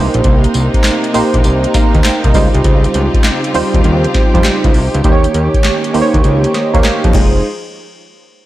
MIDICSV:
0, 0, Header, 1, 5, 480
1, 0, Start_track
1, 0, Tempo, 600000
1, 194, Time_signature, 4, 2, 24, 8
1, 6766, End_track
2, 0, Start_track
2, 0, Title_t, "Synth keys"
2, 0, Program_c, 0, 88
2, 0, Note_on_c, 0, 58, 84
2, 0, Note_on_c, 0, 63, 79
2, 0, Note_on_c, 0, 67, 76
2, 0, Note_on_c, 0, 72, 94
2, 129, Control_c, 0, 64, 127
2, 737, Note_off_c, 0, 58, 0
2, 738, Note_off_c, 0, 63, 0
2, 740, Note_off_c, 0, 67, 0
2, 741, Note_off_c, 0, 72, 0
2, 911, Note_on_c, 0, 58, 94
2, 914, Note_on_c, 0, 63, 91
2, 916, Note_on_c, 0, 67, 83
2, 919, Note_on_c, 0, 72, 106
2, 1157, Note_off_c, 0, 72, 0
2, 1368, Note_off_c, 0, 58, 0
2, 1370, Note_off_c, 0, 63, 0
2, 1371, Note_off_c, 0, 67, 0
2, 1396, Note_on_c, 0, 82, 62
2, 1401, Note_on_c, 0, 77, 59
2, 1623, Note_off_c, 0, 82, 0
2, 1626, Note_off_c, 0, 77, 0
2, 1636, Note_on_c, 0, 79, 68
2, 1641, Note_on_c, 0, 72, 63
2, 1786, Note_off_c, 0, 79, 0
2, 1788, Note_off_c, 0, 72, 0
2, 1795, Note_on_c, 0, 75, 65
2, 1800, Note_on_c, 0, 70, 54
2, 1872, Note_on_c, 0, 55, 83
2, 1875, Note_on_c, 0, 63, 81
2, 1878, Note_on_c, 0, 65, 77
2, 1881, Note_on_c, 0, 72, 95
2, 1883, Control_c, 0, 64, 0
2, 2022, Note_off_c, 0, 75, 0
2, 2025, Note_off_c, 0, 70, 0
2, 2032, Control_c, 0, 64, 127
2, 2656, Note_off_c, 0, 55, 0
2, 2658, Note_off_c, 0, 63, 0
2, 2659, Note_off_c, 0, 65, 0
2, 2661, Note_off_c, 0, 72, 0
2, 2833, Note_on_c, 0, 55, 97
2, 2836, Note_on_c, 0, 63, 86
2, 2839, Note_on_c, 0, 65, 84
2, 2843, Note_on_c, 0, 72, 109
2, 3289, Note_off_c, 0, 55, 0
2, 3291, Note_off_c, 0, 63, 0
2, 3292, Note_off_c, 0, 65, 0
2, 3294, Note_off_c, 0, 72, 0
2, 3470, Note_on_c, 0, 55, 88
2, 3475, Note_on_c, 0, 63, 78
2, 3477, Note_on_c, 0, 65, 70
2, 3481, Note_on_c, 0, 72, 97
2, 3905, Note_off_c, 0, 55, 0
2, 3907, Note_off_c, 0, 63, 0
2, 3908, Note_off_c, 0, 65, 0
2, 3910, Note_off_c, 0, 72, 0
2, 4033, Note_on_c, 0, 58, 81
2, 4036, Note_on_c, 0, 63, 78
2, 4040, Note_on_c, 0, 67, 77
2, 4042, Control_c, 0, 64, 0
2, 4043, Note_on_c, 0, 72, 82
2, 4095, Note_on_c, 0, 73, 101
2, 4107, Note_off_c, 0, 72, 0
2, 4185, Control_c, 0, 64, 127
2, 4584, Note_off_c, 0, 58, 0
2, 4586, Note_off_c, 0, 63, 0
2, 4587, Note_off_c, 0, 67, 0
2, 4615, Note_off_c, 0, 73, 0
2, 4752, Note_on_c, 0, 58, 97
2, 4755, Note_on_c, 0, 63, 86
2, 4759, Note_on_c, 0, 67, 85
2, 4762, Note_on_c, 0, 72, 84
2, 4814, Note_on_c, 0, 73, 109
2, 4827, Note_off_c, 0, 72, 0
2, 5209, Note_off_c, 0, 58, 0
2, 5211, Note_off_c, 0, 63, 0
2, 5212, Note_off_c, 0, 67, 0
2, 5237, Note_on_c, 0, 75, 74
2, 5240, Note_off_c, 0, 73, 0
2, 5383, Note_off_c, 0, 75, 0
2, 5389, Note_on_c, 0, 58, 99
2, 5393, Note_on_c, 0, 63, 86
2, 5393, Note_on_c, 0, 77, 69
2, 5396, Note_on_c, 0, 67, 88
2, 5399, Note_on_c, 0, 73, 92
2, 5469, Note_off_c, 0, 77, 0
2, 5476, Note_on_c, 0, 79, 70
2, 5698, Note_off_c, 0, 79, 0
2, 5705, Note_off_c, 0, 63, 0
2, 5712, Note_off_c, 0, 58, 0
2, 5714, Note_on_c, 0, 63, 66
2, 5715, Note_off_c, 0, 67, 0
2, 5715, Note_on_c, 0, 56, 70
2, 5715, Note_on_c, 0, 65, 64
2, 5715, Note_on_c, 0, 72, 82
2, 5717, Note_off_c, 0, 73, 0
2, 5724, Control_c, 0, 64, 0
2, 5815, Control_c, 0, 64, 127
2, 5937, Note_off_c, 0, 63, 0
2, 5938, Note_off_c, 0, 56, 0
2, 5938, Note_off_c, 0, 65, 0
2, 5938, Note_off_c, 0, 72, 0
2, 5964, Control_c, 0, 64, 0
2, 6766, End_track
3, 0, Start_track
3, 0, Title_t, "String section"
3, 0, Program_c, 1, 48
3, 0, Note_on_c, 1, 48, 85
3, 0, Note_on_c, 1, 58, 77
3, 0, Note_on_c, 1, 63, 79
3, 1855, Note_off_c, 1, 48, 0
3, 1855, Note_off_c, 1, 58, 0
3, 1871, Note_on_c, 1, 60, 76
3, 1872, Note_on_c, 1, 49, 78
3, 1873, Note_on_c, 1, 65, 80
3, 1873, Note_on_c, 1, 67, 95
3, 4003, Note_off_c, 1, 63, 0
3, 4011, Note_off_c, 1, 49, 0
3, 4011, Note_off_c, 1, 60, 0
3, 4012, Note_off_c, 1, 65, 0
3, 4036, Note_on_c, 1, 51, 84
3, 4036, Note_on_c, 1, 61, 77
3, 5681, Note_off_c, 1, 67, 0
3, 5698, Note_off_c, 1, 51, 0
3, 5698, Note_off_c, 1, 61, 0
3, 5712, Note_on_c, 1, 63, 68
3, 5712, Note_on_c, 1, 68, 83
3, 5713, Note_on_c, 1, 53, 67
3, 5936, Note_off_c, 1, 63, 0
3, 5936, Note_off_c, 1, 68, 0
3, 5937, Note_off_c, 1, 53, 0
3, 6766, End_track
4, 0, Start_track
4, 0, Title_t, "Analog synth bass"
4, 0, Program_c, 2, 38
4, 117, Note_on_c, 2, 34, 99
4, 175, Note_off_c, 2, 34, 0
4, 196, Note_on_c, 2, 36, 108
4, 370, Note_off_c, 2, 36, 0
4, 440, Note_on_c, 2, 36, 90
4, 553, Note_off_c, 2, 36, 0
4, 920, Note_on_c, 2, 34, 50
4, 982, Note_off_c, 2, 34, 0
4, 1073, Note_on_c, 2, 34, 89
4, 1132, Note_off_c, 2, 34, 0
4, 1160, Note_on_c, 2, 36, 92
4, 1332, Note_off_c, 2, 36, 0
4, 1556, Note_on_c, 2, 39, 100
4, 1614, Note_off_c, 2, 39, 0
4, 1797, Note_on_c, 2, 36, 99
4, 1854, Note_off_c, 2, 36, 0
4, 1877, Note_on_c, 2, 37, 99
4, 1991, Note_off_c, 2, 37, 0
4, 2036, Note_on_c, 2, 36, 98
4, 2094, Note_off_c, 2, 36, 0
4, 2117, Note_on_c, 2, 37, 111
4, 2290, Note_off_c, 2, 37, 0
4, 2359, Note_on_c, 2, 37, 99
4, 2473, Note_off_c, 2, 37, 0
4, 2840, Note_on_c, 2, 39, 50
4, 2902, Note_off_c, 2, 39, 0
4, 2995, Note_on_c, 2, 39, 91
4, 3053, Note_off_c, 2, 39, 0
4, 3079, Note_on_c, 2, 39, 107
4, 3252, Note_off_c, 2, 39, 0
4, 3477, Note_on_c, 2, 41, 98
4, 3534, Note_off_c, 2, 41, 0
4, 3717, Note_on_c, 2, 37, 95
4, 3775, Note_off_c, 2, 37, 0
4, 3799, Note_on_c, 2, 36, 93
4, 3912, Note_off_c, 2, 36, 0
4, 3957, Note_on_c, 2, 37, 100
4, 4014, Note_off_c, 2, 37, 0
4, 4037, Note_on_c, 2, 39, 106
4, 4210, Note_off_c, 2, 39, 0
4, 4278, Note_on_c, 2, 39, 102
4, 4392, Note_off_c, 2, 39, 0
4, 4759, Note_on_c, 2, 39, 46
4, 4821, Note_off_c, 2, 39, 0
4, 4914, Note_on_c, 2, 39, 96
4, 4973, Note_off_c, 2, 39, 0
4, 4998, Note_on_c, 2, 37, 93
4, 5171, Note_off_c, 2, 37, 0
4, 5396, Note_on_c, 2, 39, 99
4, 5454, Note_off_c, 2, 39, 0
4, 5637, Note_on_c, 2, 41, 92
4, 5694, Note_off_c, 2, 41, 0
4, 5717, Note_on_c, 2, 29, 99
4, 5939, Note_off_c, 2, 29, 0
4, 6766, End_track
5, 0, Start_track
5, 0, Title_t, "Drums"
5, 113, Note_on_c, 9, 42, 57
5, 193, Note_off_c, 9, 42, 0
5, 193, Note_on_c, 9, 42, 79
5, 194, Note_on_c, 9, 36, 119
5, 273, Note_off_c, 9, 42, 0
5, 274, Note_off_c, 9, 36, 0
5, 353, Note_on_c, 9, 42, 65
5, 433, Note_off_c, 9, 42, 0
5, 434, Note_on_c, 9, 42, 70
5, 436, Note_on_c, 9, 54, 61
5, 514, Note_off_c, 9, 42, 0
5, 516, Note_off_c, 9, 54, 0
5, 592, Note_on_c, 9, 36, 87
5, 595, Note_on_c, 9, 42, 47
5, 672, Note_off_c, 9, 36, 0
5, 672, Note_off_c, 9, 42, 0
5, 672, Note_on_c, 9, 39, 77
5, 672, Note_on_c, 9, 42, 71
5, 673, Note_on_c, 9, 38, 121
5, 674, Note_on_c, 9, 54, 89
5, 752, Note_off_c, 9, 39, 0
5, 752, Note_off_c, 9, 42, 0
5, 753, Note_off_c, 9, 38, 0
5, 754, Note_off_c, 9, 54, 0
5, 832, Note_on_c, 9, 42, 53
5, 912, Note_off_c, 9, 42, 0
5, 914, Note_on_c, 9, 46, 72
5, 915, Note_on_c, 9, 54, 62
5, 994, Note_off_c, 9, 46, 0
5, 995, Note_off_c, 9, 54, 0
5, 1071, Note_on_c, 9, 36, 98
5, 1073, Note_on_c, 9, 42, 61
5, 1151, Note_off_c, 9, 36, 0
5, 1153, Note_off_c, 9, 42, 0
5, 1153, Note_on_c, 9, 42, 70
5, 1154, Note_on_c, 9, 54, 70
5, 1233, Note_off_c, 9, 42, 0
5, 1234, Note_off_c, 9, 54, 0
5, 1313, Note_on_c, 9, 42, 52
5, 1393, Note_off_c, 9, 42, 0
5, 1394, Note_on_c, 9, 38, 62
5, 1394, Note_on_c, 9, 42, 73
5, 1394, Note_on_c, 9, 54, 69
5, 1395, Note_on_c, 9, 36, 103
5, 1474, Note_off_c, 9, 38, 0
5, 1474, Note_off_c, 9, 42, 0
5, 1474, Note_off_c, 9, 54, 0
5, 1475, Note_off_c, 9, 36, 0
5, 1554, Note_on_c, 9, 36, 87
5, 1556, Note_on_c, 9, 42, 52
5, 1633, Note_on_c, 9, 39, 80
5, 1634, Note_off_c, 9, 36, 0
5, 1634, Note_off_c, 9, 39, 0
5, 1634, Note_off_c, 9, 42, 0
5, 1634, Note_on_c, 9, 39, 102
5, 1634, Note_on_c, 9, 42, 75
5, 1636, Note_on_c, 9, 38, 123
5, 1636, Note_on_c, 9, 54, 102
5, 1714, Note_off_c, 9, 39, 0
5, 1714, Note_off_c, 9, 42, 0
5, 1716, Note_off_c, 9, 38, 0
5, 1716, Note_off_c, 9, 54, 0
5, 1793, Note_on_c, 9, 42, 53
5, 1795, Note_on_c, 9, 36, 101
5, 1873, Note_off_c, 9, 42, 0
5, 1874, Note_off_c, 9, 36, 0
5, 1874, Note_on_c, 9, 36, 94
5, 1874, Note_on_c, 9, 46, 85
5, 1877, Note_on_c, 9, 54, 75
5, 1954, Note_off_c, 9, 36, 0
5, 1954, Note_off_c, 9, 46, 0
5, 1957, Note_off_c, 9, 54, 0
5, 2036, Note_on_c, 9, 42, 58
5, 2115, Note_off_c, 9, 42, 0
5, 2115, Note_on_c, 9, 36, 109
5, 2115, Note_on_c, 9, 42, 86
5, 2195, Note_off_c, 9, 36, 0
5, 2195, Note_off_c, 9, 42, 0
5, 2274, Note_on_c, 9, 42, 64
5, 2354, Note_off_c, 9, 42, 0
5, 2354, Note_on_c, 9, 42, 76
5, 2434, Note_off_c, 9, 42, 0
5, 2513, Note_on_c, 9, 36, 100
5, 2516, Note_on_c, 9, 42, 51
5, 2593, Note_off_c, 9, 36, 0
5, 2593, Note_on_c, 9, 39, 78
5, 2594, Note_off_c, 9, 39, 0
5, 2594, Note_off_c, 9, 42, 0
5, 2594, Note_on_c, 9, 39, 96
5, 2594, Note_on_c, 9, 42, 73
5, 2595, Note_on_c, 9, 38, 108
5, 2674, Note_off_c, 9, 39, 0
5, 2674, Note_off_c, 9, 42, 0
5, 2675, Note_off_c, 9, 38, 0
5, 2754, Note_on_c, 9, 42, 49
5, 2834, Note_off_c, 9, 42, 0
5, 2836, Note_on_c, 9, 46, 73
5, 2916, Note_off_c, 9, 46, 0
5, 2992, Note_on_c, 9, 36, 97
5, 2996, Note_on_c, 9, 42, 62
5, 3072, Note_off_c, 9, 36, 0
5, 3074, Note_off_c, 9, 42, 0
5, 3074, Note_on_c, 9, 42, 68
5, 3154, Note_off_c, 9, 42, 0
5, 3235, Note_on_c, 9, 42, 50
5, 3315, Note_off_c, 9, 42, 0
5, 3316, Note_on_c, 9, 36, 96
5, 3316, Note_on_c, 9, 38, 62
5, 3316, Note_on_c, 9, 42, 67
5, 3396, Note_off_c, 9, 36, 0
5, 3396, Note_off_c, 9, 38, 0
5, 3396, Note_off_c, 9, 42, 0
5, 3475, Note_on_c, 9, 36, 90
5, 3478, Note_on_c, 9, 42, 52
5, 3553, Note_on_c, 9, 39, 77
5, 3554, Note_off_c, 9, 42, 0
5, 3554, Note_on_c, 9, 42, 78
5, 3555, Note_off_c, 9, 36, 0
5, 3555, Note_off_c, 9, 39, 0
5, 3555, Note_on_c, 9, 39, 99
5, 3557, Note_on_c, 9, 38, 123
5, 3634, Note_off_c, 9, 42, 0
5, 3635, Note_off_c, 9, 39, 0
5, 3637, Note_off_c, 9, 38, 0
5, 3714, Note_on_c, 9, 42, 54
5, 3715, Note_on_c, 9, 36, 106
5, 3794, Note_off_c, 9, 42, 0
5, 3794, Note_on_c, 9, 46, 74
5, 3795, Note_off_c, 9, 36, 0
5, 3874, Note_off_c, 9, 46, 0
5, 3956, Note_on_c, 9, 42, 57
5, 4034, Note_off_c, 9, 42, 0
5, 4034, Note_on_c, 9, 42, 78
5, 4035, Note_on_c, 9, 36, 112
5, 4114, Note_off_c, 9, 42, 0
5, 4115, Note_off_c, 9, 36, 0
5, 4193, Note_on_c, 9, 42, 65
5, 4273, Note_off_c, 9, 42, 0
5, 4275, Note_on_c, 9, 42, 72
5, 4355, Note_off_c, 9, 42, 0
5, 4433, Note_on_c, 9, 36, 88
5, 4436, Note_on_c, 9, 42, 45
5, 4513, Note_off_c, 9, 36, 0
5, 4513, Note_on_c, 9, 39, 76
5, 4514, Note_off_c, 9, 39, 0
5, 4514, Note_off_c, 9, 42, 0
5, 4514, Note_on_c, 9, 39, 89
5, 4514, Note_on_c, 9, 42, 71
5, 4515, Note_on_c, 9, 38, 109
5, 4594, Note_off_c, 9, 39, 0
5, 4594, Note_off_c, 9, 42, 0
5, 4595, Note_off_c, 9, 38, 0
5, 4674, Note_on_c, 9, 42, 48
5, 4754, Note_off_c, 9, 42, 0
5, 4755, Note_on_c, 9, 46, 67
5, 4835, Note_off_c, 9, 46, 0
5, 4912, Note_on_c, 9, 36, 98
5, 4915, Note_on_c, 9, 42, 59
5, 4992, Note_off_c, 9, 36, 0
5, 4993, Note_off_c, 9, 42, 0
5, 4993, Note_on_c, 9, 42, 71
5, 5073, Note_off_c, 9, 42, 0
5, 5153, Note_on_c, 9, 42, 53
5, 5233, Note_off_c, 9, 42, 0
5, 5235, Note_on_c, 9, 38, 66
5, 5235, Note_on_c, 9, 42, 67
5, 5315, Note_off_c, 9, 38, 0
5, 5315, Note_off_c, 9, 42, 0
5, 5394, Note_on_c, 9, 36, 85
5, 5396, Note_on_c, 9, 42, 51
5, 5473, Note_on_c, 9, 39, 76
5, 5474, Note_off_c, 9, 36, 0
5, 5475, Note_off_c, 9, 42, 0
5, 5475, Note_on_c, 9, 42, 74
5, 5476, Note_off_c, 9, 39, 0
5, 5476, Note_on_c, 9, 39, 100
5, 5478, Note_on_c, 9, 38, 124
5, 5555, Note_off_c, 9, 42, 0
5, 5556, Note_off_c, 9, 39, 0
5, 5558, Note_off_c, 9, 38, 0
5, 5634, Note_on_c, 9, 42, 53
5, 5635, Note_on_c, 9, 36, 101
5, 5714, Note_off_c, 9, 36, 0
5, 5714, Note_off_c, 9, 42, 0
5, 5714, Note_on_c, 9, 36, 114
5, 5714, Note_on_c, 9, 39, 85
5, 5715, Note_on_c, 9, 49, 92
5, 5794, Note_off_c, 9, 36, 0
5, 5794, Note_off_c, 9, 39, 0
5, 5795, Note_off_c, 9, 49, 0
5, 6766, End_track
0, 0, End_of_file